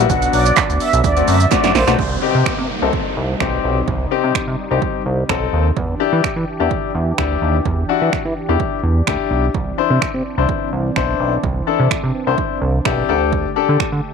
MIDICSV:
0, 0, Header, 1, 7, 480
1, 0, Start_track
1, 0, Tempo, 472441
1, 99, Time_signature, 4, 2, 24, 8
1, 14362, End_track
2, 0, Start_track
2, 0, Title_t, "Supersaw synth"
2, 0, Program_c, 0, 81
2, 99, Note_on_c, 0, 78, 109
2, 285, Note_off_c, 0, 78, 0
2, 340, Note_on_c, 0, 74, 83
2, 526, Note_off_c, 0, 74, 0
2, 819, Note_on_c, 0, 76, 90
2, 1005, Note_off_c, 0, 76, 0
2, 1058, Note_on_c, 0, 74, 86
2, 1244, Note_off_c, 0, 74, 0
2, 1300, Note_on_c, 0, 76, 78
2, 1398, Note_off_c, 0, 76, 0
2, 1537, Note_on_c, 0, 74, 83
2, 1636, Note_off_c, 0, 74, 0
2, 1776, Note_on_c, 0, 72, 88
2, 1875, Note_off_c, 0, 72, 0
2, 14362, End_track
3, 0, Start_track
3, 0, Title_t, "Grand piano"
3, 0, Program_c, 1, 0
3, 98, Note_on_c, 1, 54, 86
3, 99, Note_on_c, 1, 59, 81
3, 101, Note_on_c, 1, 62, 79
3, 103, Note_on_c, 1, 66, 96
3, 869, Note_off_c, 1, 54, 0
3, 870, Note_off_c, 1, 59, 0
3, 871, Note_off_c, 1, 62, 0
3, 872, Note_off_c, 1, 66, 0
3, 1183, Note_on_c, 1, 57, 78
3, 1184, Note_on_c, 1, 60, 74
3, 1186, Note_on_c, 1, 62, 70
3, 1188, Note_on_c, 1, 66, 84
3, 1364, Note_off_c, 1, 57, 0
3, 1364, Note_off_c, 1, 60, 0
3, 1365, Note_off_c, 1, 62, 0
3, 1366, Note_off_c, 1, 66, 0
3, 1535, Note_on_c, 1, 57, 84
3, 1536, Note_on_c, 1, 60, 76
3, 1538, Note_on_c, 1, 62, 76
3, 1540, Note_on_c, 1, 66, 92
3, 1723, Note_off_c, 1, 57, 0
3, 1723, Note_off_c, 1, 60, 0
3, 1724, Note_off_c, 1, 62, 0
3, 1725, Note_off_c, 1, 66, 0
3, 1902, Note_on_c, 1, 57, 85
3, 1904, Note_on_c, 1, 60, 79
3, 1906, Note_on_c, 1, 62, 80
3, 1907, Note_on_c, 1, 66, 91
3, 2017, Note_off_c, 1, 57, 0
3, 2018, Note_off_c, 1, 60, 0
3, 2018, Note_off_c, 1, 62, 0
3, 2020, Note_off_c, 1, 66, 0
3, 2255, Note_on_c, 1, 60, 92
3, 2258, Note_on_c, 1, 63, 83
3, 2260, Note_on_c, 1, 67, 101
3, 2565, Note_off_c, 1, 60, 0
3, 2567, Note_off_c, 1, 63, 0
3, 2568, Note_off_c, 1, 67, 0
3, 2864, Note_on_c, 1, 60, 81
3, 2866, Note_on_c, 1, 63, 73
3, 2868, Note_on_c, 1, 69, 90
3, 3165, Note_off_c, 1, 60, 0
3, 3166, Note_off_c, 1, 63, 0
3, 3167, Note_off_c, 1, 69, 0
3, 3457, Note_on_c, 1, 60, 93
3, 3460, Note_on_c, 1, 63, 82
3, 3462, Note_on_c, 1, 67, 98
3, 3830, Note_off_c, 1, 60, 0
3, 3831, Note_off_c, 1, 63, 0
3, 3832, Note_off_c, 1, 67, 0
3, 4177, Note_on_c, 1, 60, 91
3, 4179, Note_on_c, 1, 63, 83
3, 4182, Note_on_c, 1, 67, 99
3, 4486, Note_off_c, 1, 60, 0
3, 4487, Note_off_c, 1, 63, 0
3, 4488, Note_off_c, 1, 67, 0
3, 4783, Note_on_c, 1, 60, 82
3, 4786, Note_on_c, 1, 63, 77
3, 4788, Note_on_c, 1, 67, 92
3, 5085, Note_off_c, 1, 60, 0
3, 5086, Note_off_c, 1, 63, 0
3, 5087, Note_off_c, 1, 67, 0
3, 5376, Note_on_c, 1, 60, 94
3, 5378, Note_on_c, 1, 63, 84
3, 5380, Note_on_c, 1, 69, 104
3, 5749, Note_off_c, 1, 60, 0
3, 5750, Note_off_c, 1, 63, 0
3, 5751, Note_off_c, 1, 69, 0
3, 6094, Note_on_c, 1, 62, 97
3, 6096, Note_on_c, 1, 64, 81
3, 6098, Note_on_c, 1, 67, 103
3, 6404, Note_off_c, 1, 62, 0
3, 6405, Note_off_c, 1, 64, 0
3, 6406, Note_off_c, 1, 67, 0
3, 6701, Note_on_c, 1, 62, 82
3, 6705, Note_on_c, 1, 64, 75
3, 6707, Note_on_c, 1, 67, 91
3, 7004, Note_off_c, 1, 62, 0
3, 7006, Note_off_c, 1, 64, 0
3, 7007, Note_off_c, 1, 67, 0
3, 7295, Note_on_c, 1, 62, 95
3, 7297, Note_on_c, 1, 64, 86
3, 7300, Note_on_c, 1, 67, 98
3, 7669, Note_off_c, 1, 62, 0
3, 7670, Note_off_c, 1, 64, 0
3, 7671, Note_off_c, 1, 67, 0
3, 8014, Note_on_c, 1, 62, 89
3, 8017, Note_on_c, 1, 64, 83
3, 8019, Note_on_c, 1, 66, 103
3, 8324, Note_off_c, 1, 62, 0
3, 8326, Note_off_c, 1, 64, 0
3, 8327, Note_off_c, 1, 66, 0
3, 8622, Note_on_c, 1, 62, 82
3, 8624, Note_on_c, 1, 64, 75
3, 8627, Note_on_c, 1, 67, 91
3, 8924, Note_off_c, 1, 62, 0
3, 8925, Note_off_c, 1, 64, 0
3, 8927, Note_off_c, 1, 67, 0
3, 9214, Note_on_c, 1, 62, 91
3, 9217, Note_on_c, 1, 64, 82
3, 9219, Note_on_c, 1, 67, 106
3, 9588, Note_off_c, 1, 62, 0
3, 9590, Note_off_c, 1, 64, 0
3, 9591, Note_off_c, 1, 67, 0
3, 9935, Note_on_c, 1, 62, 90
3, 9938, Note_on_c, 1, 64, 83
3, 9940, Note_on_c, 1, 72, 99
3, 10245, Note_off_c, 1, 62, 0
3, 10246, Note_off_c, 1, 64, 0
3, 10247, Note_off_c, 1, 72, 0
3, 10543, Note_on_c, 1, 62, 82
3, 10546, Note_on_c, 1, 64, 72
3, 10548, Note_on_c, 1, 72, 86
3, 10845, Note_off_c, 1, 62, 0
3, 10846, Note_off_c, 1, 64, 0
3, 10847, Note_off_c, 1, 72, 0
3, 11137, Note_on_c, 1, 62, 91
3, 11139, Note_on_c, 1, 64, 81
3, 11141, Note_on_c, 1, 72, 104
3, 11510, Note_off_c, 1, 62, 0
3, 11511, Note_off_c, 1, 64, 0
3, 11512, Note_off_c, 1, 72, 0
3, 11856, Note_on_c, 1, 62, 90
3, 11858, Note_on_c, 1, 64, 84
3, 11860, Note_on_c, 1, 69, 98
3, 12165, Note_off_c, 1, 62, 0
3, 12166, Note_off_c, 1, 64, 0
3, 12168, Note_off_c, 1, 69, 0
3, 12464, Note_on_c, 1, 62, 81
3, 12466, Note_on_c, 1, 64, 75
3, 12469, Note_on_c, 1, 72, 94
3, 12765, Note_off_c, 1, 62, 0
3, 12766, Note_off_c, 1, 64, 0
3, 12768, Note_off_c, 1, 72, 0
3, 13056, Note_on_c, 1, 62, 93
3, 13059, Note_on_c, 1, 64, 83
3, 13062, Note_on_c, 1, 67, 105
3, 13281, Note_off_c, 1, 62, 0
3, 13284, Note_off_c, 1, 67, 0
3, 13296, Note_on_c, 1, 62, 96
3, 13299, Note_off_c, 1, 64, 0
3, 13299, Note_on_c, 1, 67, 87
3, 13301, Note_on_c, 1, 69, 102
3, 13687, Note_off_c, 1, 62, 0
3, 13689, Note_off_c, 1, 67, 0
3, 13689, Note_off_c, 1, 69, 0
3, 13776, Note_on_c, 1, 62, 92
3, 13779, Note_on_c, 1, 67, 85
3, 13781, Note_on_c, 1, 69, 104
3, 14085, Note_off_c, 1, 62, 0
3, 14087, Note_off_c, 1, 67, 0
3, 14088, Note_off_c, 1, 69, 0
3, 14362, End_track
4, 0, Start_track
4, 0, Title_t, "Analog synth pad"
4, 0, Program_c, 2, 89
4, 98, Note_on_c, 2, 62, 73
4, 99, Note_on_c, 2, 59, 74
4, 99, Note_on_c, 2, 66, 91
4, 1049, Note_off_c, 2, 59, 0
4, 1049, Note_off_c, 2, 62, 0
4, 1060, Note_on_c, 2, 60, 67
4, 1061, Note_on_c, 2, 50, 77
4, 1999, Note_off_c, 2, 66, 0
4, 2010, Note_off_c, 2, 50, 0
4, 2010, Note_off_c, 2, 60, 0
4, 2018, Note_on_c, 2, 48, 76
4, 2018, Note_on_c, 2, 55, 73
4, 2018, Note_on_c, 2, 63, 84
4, 5820, Note_off_c, 2, 48, 0
4, 5820, Note_off_c, 2, 55, 0
4, 5820, Note_off_c, 2, 63, 0
4, 5859, Note_on_c, 2, 52, 77
4, 5861, Note_on_c, 2, 62, 70
4, 5861, Note_on_c, 2, 67, 86
4, 9661, Note_off_c, 2, 52, 0
4, 9662, Note_off_c, 2, 67, 0
4, 9701, Note_on_c, 2, 52, 78
4, 9703, Note_on_c, 2, 60, 74
4, 13259, Note_off_c, 2, 62, 0
4, 13264, Note_off_c, 2, 52, 0
4, 13265, Note_off_c, 2, 60, 0
4, 13298, Note_on_c, 2, 50, 77
4, 13298, Note_on_c, 2, 57, 70
4, 13298, Note_on_c, 2, 67, 85
4, 14362, Note_off_c, 2, 50, 0
4, 14362, Note_off_c, 2, 57, 0
4, 14362, Note_off_c, 2, 67, 0
4, 14362, End_track
5, 0, Start_track
5, 0, Title_t, "Analog synth bass"
5, 0, Program_c, 3, 38
5, 99, Note_on_c, 3, 35, 109
5, 285, Note_off_c, 3, 35, 0
5, 339, Note_on_c, 3, 35, 111
5, 526, Note_off_c, 3, 35, 0
5, 707, Note_on_c, 3, 38, 78
5, 795, Note_off_c, 3, 38, 0
5, 948, Note_on_c, 3, 35, 95
5, 1035, Note_off_c, 3, 35, 0
5, 1057, Note_on_c, 3, 38, 108
5, 1244, Note_off_c, 3, 38, 0
5, 1299, Note_on_c, 3, 42, 103
5, 1486, Note_off_c, 3, 42, 0
5, 1666, Note_on_c, 3, 42, 86
5, 1754, Note_off_c, 3, 42, 0
5, 1777, Note_on_c, 3, 34, 97
5, 1877, Note_off_c, 3, 34, 0
5, 1905, Note_on_c, 3, 35, 94
5, 1993, Note_off_c, 3, 35, 0
5, 2018, Note_on_c, 3, 36, 111
5, 2205, Note_off_c, 3, 36, 0
5, 2385, Note_on_c, 3, 48, 94
5, 2473, Note_off_c, 3, 48, 0
5, 2500, Note_on_c, 3, 48, 49
5, 2550, Note_off_c, 3, 48, 0
5, 2626, Note_on_c, 3, 48, 87
5, 2714, Note_off_c, 3, 48, 0
5, 2865, Note_on_c, 3, 36, 91
5, 2953, Note_off_c, 3, 36, 0
5, 3218, Note_on_c, 3, 36, 93
5, 3405, Note_off_c, 3, 36, 0
5, 3462, Note_on_c, 3, 35, 91
5, 3647, Note_off_c, 3, 35, 0
5, 3699, Note_on_c, 3, 35, 85
5, 3885, Note_off_c, 3, 35, 0
5, 3939, Note_on_c, 3, 36, 112
5, 4126, Note_off_c, 3, 36, 0
5, 4306, Note_on_c, 3, 48, 90
5, 4394, Note_off_c, 3, 48, 0
5, 4420, Note_on_c, 3, 48, 48
5, 4470, Note_off_c, 3, 48, 0
5, 4545, Note_on_c, 3, 48, 89
5, 4633, Note_off_c, 3, 48, 0
5, 4786, Note_on_c, 3, 36, 90
5, 4874, Note_off_c, 3, 36, 0
5, 5138, Note_on_c, 3, 36, 93
5, 5325, Note_off_c, 3, 36, 0
5, 5380, Note_on_c, 3, 35, 101
5, 5566, Note_off_c, 3, 35, 0
5, 5619, Note_on_c, 3, 39, 91
5, 5805, Note_off_c, 3, 39, 0
5, 5859, Note_on_c, 3, 40, 103
5, 6045, Note_off_c, 3, 40, 0
5, 6225, Note_on_c, 3, 52, 93
5, 6313, Note_off_c, 3, 52, 0
5, 6339, Note_on_c, 3, 52, 49
5, 6390, Note_off_c, 3, 52, 0
5, 6464, Note_on_c, 3, 52, 94
5, 6552, Note_off_c, 3, 52, 0
5, 6706, Note_on_c, 3, 40, 90
5, 6794, Note_off_c, 3, 40, 0
5, 7058, Note_on_c, 3, 40, 89
5, 7245, Note_off_c, 3, 40, 0
5, 7299, Note_on_c, 3, 38, 89
5, 7485, Note_off_c, 3, 38, 0
5, 7537, Note_on_c, 3, 39, 91
5, 7724, Note_off_c, 3, 39, 0
5, 7778, Note_on_c, 3, 40, 103
5, 7965, Note_off_c, 3, 40, 0
5, 8145, Note_on_c, 3, 52, 93
5, 8233, Note_off_c, 3, 52, 0
5, 8258, Note_on_c, 3, 52, 50
5, 8309, Note_off_c, 3, 52, 0
5, 8383, Note_on_c, 3, 52, 92
5, 8472, Note_off_c, 3, 52, 0
5, 8622, Note_on_c, 3, 40, 96
5, 8711, Note_off_c, 3, 40, 0
5, 8975, Note_on_c, 3, 40, 85
5, 9163, Note_off_c, 3, 40, 0
5, 9220, Note_on_c, 3, 38, 90
5, 9318, Note_off_c, 3, 38, 0
5, 9457, Note_on_c, 3, 35, 91
5, 9644, Note_off_c, 3, 35, 0
5, 9698, Note_on_c, 3, 36, 111
5, 9885, Note_off_c, 3, 36, 0
5, 10062, Note_on_c, 3, 48, 95
5, 10151, Note_off_c, 3, 48, 0
5, 10178, Note_on_c, 3, 48, 49
5, 10229, Note_off_c, 3, 48, 0
5, 10304, Note_on_c, 3, 48, 83
5, 10392, Note_off_c, 3, 48, 0
5, 10544, Note_on_c, 3, 36, 87
5, 10633, Note_off_c, 3, 36, 0
5, 10897, Note_on_c, 3, 36, 90
5, 11084, Note_off_c, 3, 36, 0
5, 11140, Note_on_c, 3, 35, 91
5, 11326, Note_off_c, 3, 35, 0
5, 11376, Note_on_c, 3, 35, 94
5, 11563, Note_off_c, 3, 35, 0
5, 11619, Note_on_c, 3, 36, 102
5, 11806, Note_off_c, 3, 36, 0
5, 11985, Note_on_c, 3, 48, 94
5, 12073, Note_off_c, 3, 48, 0
5, 12099, Note_on_c, 3, 48, 49
5, 12150, Note_off_c, 3, 48, 0
5, 12227, Note_on_c, 3, 48, 94
5, 12314, Note_off_c, 3, 48, 0
5, 12467, Note_on_c, 3, 36, 94
5, 12554, Note_off_c, 3, 36, 0
5, 12818, Note_on_c, 3, 36, 99
5, 13005, Note_off_c, 3, 36, 0
5, 13061, Note_on_c, 3, 35, 94
5, 13247, Note_off_c, 3, 35, 0
5, 13300, Note_on_c, 3, 38, 100
5, 13673, Note_off_c, 3, 38, 0
5, 13908, Note_on_c, 3, 50, 100
5, 13995, Note_off_c, 3, 50, 0
5, 14019, Note_on_c, 3, 50, 49
5, 14070, Note_off_c, 3, 50, 0
5, 14147, Note_on_c, 3, 50, 86
5, 14234, Note_off_c, 3, 50, 0
5, 14362, End_track
6, 0, Start_track
6, 0, Title_t, "Downlifter"
6, 0, Program_c, 4, 103
6, 2018, Note_on_c, 4, 60, 84
6, 5859, Note_off_c, 4, 60, 0
6, 14362, End_track
7, 0, Start_track
7, 0, Title_t, "Drums"
7, 99, Note_on_c, 9, 36, 123
7, 99, Note_on_c, 9, 42, 83
7, 99, Note_on_c, 9, 82, 84
7, 200, Note_off_c, 9, 36, 0
7, 201, Note_off_c, 9, 42, 0
7, 201, Note_off_c, 9, 82, 0
7, 225, Note_on_c, 9, 42, 56
7, 225, Note_on_c, 9, 82, 57
7, 327, Note_off_c, 9, 42, 0
7, 327, Note_off_c, 9, 82, 0
7, 338, Note_on_c, 9, 46, 78
7, 338, Note_on_c, 9, 82, 55
7, 440, Note_off_c, 9, 46, 0
7, 440, Note_off_c, 9, 82, 0
7, 465, Note_on_c, 9, 42, 62
7, 465, Note_on_c, 9, 82, 88
7, 567, Note_off_c, 9, 42, 0
7, 567, Note_off_c, 9, 82, 0
7, 577, Note_on_c, 9, 42, 80
7, 577, Note_on_c, 9, 82, 81
7, 578, Note_on_c, 9, 39, 92
7, 580, Note_on_c, 9, 36, 127
7, 581, Note_off_c, 9, 39, 0
7, 581, Note_on_c, 9, 39, 120
7, 678, Note_off_c, 9, 42, 0
7, 678, Note_off_c, 9, 82, 0
7, 681, Note_off_c, 9, 36, 0
7, 683, Note_off_c, 9, 39, 0
7, 710, Note_on_c, 9, 42, 49
7, 710, Note_on_c, 9, 82, 47
7, 811, Note_off_c, 9, 42, 0
7, 811, Note_off_c, 9, 82, 0
7, 817, Note_on_c, 9, 46, 73
7, 817, Note_on_c, 9, 82, 55
7, 918, Note_off_c, 9, 46, 0
7, 918, Note_off_c, 9, 82, 0
7, 948, Note_on_c, 9, 42, 62
7, 948, Note_on_c, 9, 82, 88
7, 1050, Note_off_c, 9, 42, 0
7, 1050, Note_off_c, 9, 82, 0
7, 1057, Note_on_c, 9, 36, 120
7, 1059, Note_on_c, 9, 42, 78
7, 1059, Note_on_c, 9, 82, 77
7, 1158, Note_off_c, 9, 36, 0
7, 1161, Note_off_c, 9, 42, 0
7, 1161, Note_off_c, 9, 82, 0
7, 1185, Note_on_c, 9, 42, 46
7, 1185, Note_on_c, 9, 82, 49
7, 1287, Note_off_c, 9, 42, 0
7, 1287, Note_off_c, 9, 82, 0
7, 1298, Note_on_c, 9, 46, 83
7, 1298, Note_on_c, 9, 82, 61
7, 1399, Note_off_c, 9, 46, 0
7, 1399, Note_off_c, 9, 82, 0
7, 1425, Note_on_c, 9, 42, 63
7, 1425, Note_on_c, 9, 82, 91
7, 1527, Note_off_c, 9, 42, 0
7, 1527, Note_off_c, 9, 82, 0
7, 1539, Note_on_c, 9, 38, 65
7, 1540, Note_on_c, 9, 36, 118
7, 1540, Note_on_c, 9, 39, 74
7, 1540, Note_on_c, 9, 42, 81
7, 1540, Note_on_c, 9, 82, 81
7, 1640, Note_off_c, 9, 38, 0
7, 1641, Note_off_c, 9, 39, 0
7, 1641, Note_off_c, 9, 42, 0
7, 1641, Note_off_c, 9, 82, 0
7, 1642, Note_off_c, 9, 36, 0
7, 1664, Note_on_c, 9, 42, 63
7, 1664, Note_on_c, 9, 82, 62
7, 1665, Note_on_c, 9, 38, 72
7, 1766, Note_off_c, 9, 42, 0
7, 1766, Note_off_c, 9, 82, 0
7, 1767, Note_off_c, 9, 38, 0
7, 1779, Note_on_c, 9, 46, 66
7, 1779, Note_on_c, 9, 82, 49
7, 1780, Note_on_c, 9, 38, 94
7, 1880, Note_off_c, 9, 46, 0
7, 1880, Note_off_c, 9, 82, 0
7, 1881, Note_off_c, 9, 38, 0
7, 1906, Note_on_c, 9, 38, 99
7, 1906, Note_on_c, 9, 42, 61
7, 1906, Note_on_c, 9, 82, 82
7, 2008, Note_off_c, 9, 38, 0
7, 2008, Note_off_c, 9, 42, 0
7, 2008, Note_off_c, 9, 82, 0
7, 2019, Note_on_c, 9, 36, 113
7, 2120, Note_off_c, 9, 36, 0
7, 2500, Note_on_c, 9, 36, 113
7, 2501, Note_on_c, 9, 26, 109
7, 2601, Note_off_c, 9, 36, 0
7, 2603, Note_off_c, 9, 26, 0
7, 2977, Note_on_c, 9, 36, 115
7, 3079, Note_off_c, 9, 36, 0
7, 3459, Note_on_c, 9, 26, 117
7, 3461, Note_on_c, 9, 36, 102
7, 3560, Note_off_c, 9, 26, 0
7, 3562, Note_off_c, 9, 36, 0
7, 3939, Note_on_c, 9, 36, 112
7, 4041, Note_off_c, 9, 36, 0
7, 4420, Note_on_c, 9, 36, 113
7, 4421, Note_on_c, 9, 26, 108
7, 4521, Note_off_c, 9, 36, 0
7, 4522, Note_off_c, 9, 26, 0
7, 4897, Note_on_c, 9, 36, 109
7, 4998, Note_off_c, 9, 36, 0
7, 5378, Note_on_c, 9, 26, 114
7, 5380, Note_on_c, 9, 36, 105
7, 5480, Note_off_c, 9, 26, 0
7, 5482, Note_off_c, 9, 36, 0
7, 5858, Note_on_c, 9, 36, 112
7, 5960, Note_off_c, 9, 36, 0
7, 6339, Note_on_c, 9, 36, 119
7, 6340, Note_on_c, 9, 26, 109
7, 6440, Note_off_c, 9, 36, 0
7, 6442, Note_off_c, 9, 26, 0
7, 6816, Note_on_c, 9, 36, 111
7, 6917, Note_off_c, 9, 36, 0
7, 7297, Note_on_c, 9, 26, 114
7, 7299, Note_on_c, 9, 36, 104
7, 7398, Note_off_c, 9, 26, 0
7, 7401, Note_off_c, 9, 36, 0
7, 7777, Note_on_c, 9, 36, 115
7, 7879, Note_off_c, 9, 36, 0
7, 8258, Note_on_c, 9, 36, 116
7, 8260, Note_on_c, 9, 26, 105
7, 8360, Note_off_c, 9, 36, 0
7, 8361, Note_off_c, 9, 26, 0
7, 8736, Note_on_c, 9, 36, 113
7, 8837, Note_off_c, 9, 36, 0
7, 9217, Note_on_c, 9, 26, 121
7, 9219, Note_on_c, 9, 36, 104
7, 9319, Note_off_c, 9, 26, 0
7, 9321, Note_off_c, 9, 36, 0
7, 9698, Note_on_c, 9, 36, 116
7, 9799, Note_off_c, 9, 36, 0
7, 10178, Note_on_c, 9, 36, 112
7, 10180, Note_on_c, 9, 26, 109
7, 10280, Note_off_c, 9, 36, 0
7, 10281, Note_off_c, 9, 26, 0
7, 10656, Note_on_c, 9, 36, 113
7, 10758, Note_off_c, 9, 36, 0
7, 11137, Note_on_c, 9, 26, 114
7, 11140, Note_on_c, 9, 36, 106
7, 11239, Note_off_c, 9, 26, 0
7, 11241, Note_off_c, 9, 36, 0
7, 11618, Note_on_c, 9, 36, 112
7, 11720, Note_off_c, 9, 36, 0
7, 12100, Note_on_c, 9, 36, 115
7, 12101, Note_on_c, 9, 26, 107
7, 12201, Note_off_c, 9, 36, 0
7, 12202, Note_off_c, 9, 26, 0
7, 12577, Note_on_c, 9, 36, 111
7, 12679, Note_off_c, 9, 36, 0
7, 13059, Note_on_c, 9, 26, 120
7, 13060, Note_on_c, 9, 36, 105
7, 13161, Note_off_c, 9, 26, 0
7, 13162, Note_off_c, 9, 36, 0
7, 13539, Note_on_c, 9, 36, 114
7, 13641, Note_off_c, 9, 36, 0
7, 14020, Note_on_c, 9, 36, 118
7, 14021, Note_on_c, 9, 26, 113
7, 14121, Note_off_c, 9, 36, 0
7, 14123, Note_off_c, 9, 26, 0
7, 14362, End_track
0, 0, End_of_file